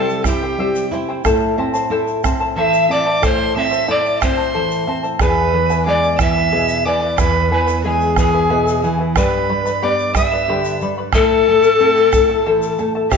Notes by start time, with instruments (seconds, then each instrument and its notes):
Already playing: nylon-string guitar C3 G3, charango E4 G4 C5 E5 G5, pan flute A4, violin A5
0.09 shaker
0.24 nylon-string guitar E4, charango E4 C5 E5 G5, pan flute G4, violin G5, bombo rim, bombo low, shaker
0.43 charango E4 C5 G5
0.58 nylon-string guitar G3, charango E4 G4 C5 E5 G5
0.75 shaker
0.91 nylon-string guitar E4, charango E4 C5 E5 G5, shaker
1.09 charango E4 C5 G5
1.25 nylon-string guitar A2, charango E4 A4 C5 E5 A5, bombo rim, bombo low, shaker
1.42 bombo rim
1.58 nylon-string guitar C4, charango E4 C5 E5 A5
1.74 charango E4 C5 A5, shaker
1.90 nylon-string guitar E4, charango E4 A4 C5 E5 A5
2.08 shaker
2.23 nylon-string guitar C4, charango E4 C5 E5 A5, bombo rim, bombo low, shaker
2.40 charango E4 C5 A5
2.56 nylon-string guitar E3, charango E4 A4 C5 E5 A5, pan flute E5, violin E6
2.74 shaker
2.89 nylon-string guitar C4, charango E4 C5 E5 A5, pan flute D5, violin D6, shaker
3.06 charango E4 C5 A5
3.22 nylon-string guitar A2, charango E4 A4 C5 E5 A5, pan flute C5, violin C6, bombo rim, bombo low, shaker
3.55 nylon-string guitar C4, charango E4 C5 E5 A5, pan flute E5, violin E6
3.71 charango E4 C5 A5, shaker
3.88 charango E4 A4 C5 E5 A5, nylon-string guitar E4, pan flute D5, violin D6
4.06 bombo rim, shaker
4.21 nylon-string guitar C4, charango E4 C5 E5 A5, pan flute C5, violin C6, bombo rim, bombo low, shaker
4.37 charango E4 C5 A5, bombo rim
4.54 nylon-string guitar E3, charango E4 A4 C5 E5 A5
4.71 shaker
4.87 nylon-string guitar C4, charango E4 C5 E5 A5, bombo rim
5.03 charango E4 C5 A5, bombo rim, shaker
5.19 nylon-string guitar E2, charango E4 G#4 B4 E5 G#5, pan flute B4, violin B5, bombo rim, bombo low, shaker
5.37 bombo rim
5.54 nylon-string guitar E3, charango E4 B4 E5 G#5
5.70 charango E4 B4 G#5, shaker
5.86 nylon-string guitar G#3, charango E4 G#4 B4 E5 G#5, pan flute D5, violin D6
6.04 shaker
6.19 nylon-string guitar E3, charango E4 B4 E5 G#5, pan flute E5, violin E6, bombo rim, bombo low, shaker
6.36 charango E4 B4 G#5
6.52 nylon-string guitar B2, charango E4 G#4 B4 E5 G#5
6.68 shaker
6.85 nylon-string guitar E3, charango E4 B4 E5 G#5, pan flute D5, violin D6, shaker
7.01 charango E4 B4 G#5
7.18 nylon-string guitar E2, charango E4 G#4 B4 E5 G#5, pan flute B4, violin B5, bombo rim, bombo low, shaker
7.34 bombo rim
7.50 nylon-string guitar E3, charango E4 B4 E5 G#5, pan flute B4, violin B5
7.67 charango E4 B4 G#5, shaker
7.84 nylon-string guitar G#3, charango E4 G#4 B4 E5 G#5, pan flute G#4, violin G#5
8.01 shaker
8.16 nylon-string guitar E3, charango E4 B4 E5 G#5, pan flute G#4, violin G#5, bombo rim, bombo low, shaker
8.33 charango E4 B4 G#5
8.49 nylon-string guitar B2, charango E4 G#4 B4 E5 G#5
8.68 shaker
8.82 nylon-string guitar E3, charango E4 B4 E5 G#5, shaker
8.99 charango E4 B4 G#5
9.16 nylon-string guitar G2, charango G4 B4 D5 G5 B5, pan flute B4, violin B5, bombo rim, bombo low, shaker
9.32 bombo rim
9.49 nylon-string guitar G3, charango B4 D5 G5 B5
9.66 charango B4 D5 B5, shaker
9.81 nylon-string guitar B3, charango G4 B4 D5 G5 B5, pan flute D5, violin D6
9.99 shaker
10.14 nylon-string guitar G3, charango B4 D5 G5 B5, pan flute E5, violin E6, bombo rim, bombo low, shaker
10.32 charango B4 D5 B5
10.48 nylon-string guitar D3, charango G4 B4 D5 G5 B5
10.65 shaker
10.81 nylon-string guitar G3, charango B4 D5 G5 B5, shaker
10.98 charango B4 D5 B5
11.13 nylon-string guitar A2, charango E4 A4 C5 E5 A5, pan flute A4, violin A5, bombo rim, bombo low, shaker
11.30 bombo rim
11.47 nylon-string guitar A3, charango E4 A4 E5 A5
11.63 charango E4 A4 A5, shaker
11.79 nylon-string guitar C4, charango E4 A4 C5 E5 A5, bombo rim, shaker
11.96 bombo rim, shaker
12.13 nylon-string guitar A3, charango E4 A4 E5 A5, bombo rim, bombo low, shaker
12.29 charango E4 A4 A5
12.46 nylon-string guitar E3, charango E4 A4 C5 E5 A5
12.62 shaker
12.78 nylon-string guitar A3, charango E4 A4 E5 A5, bombo rim, shaker
12.95 charango E4 A4 A5
13.11 nylon-string guitar C3, charango E4 G4 C5 E5 G5, pan flute G4, violin G4, bombo rim, bombo low, shaker